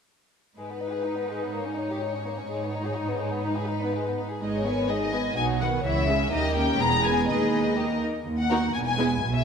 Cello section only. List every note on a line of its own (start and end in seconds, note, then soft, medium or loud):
0.57 2.45 G#2 soft
2.49 4.17 G#2 soft
4.41 5.33 G#2 soft
5.37 5.84 B2 soft
5.85 6.31 C#3 soft
6.32 6.76 D#2 soft
6.80 7.27 E2 soft
7.27 8.05 D#2 soft
8.26 8.66 D#2 soft
8.74 9.14 E2 soft
9.22 9.44 B2 medium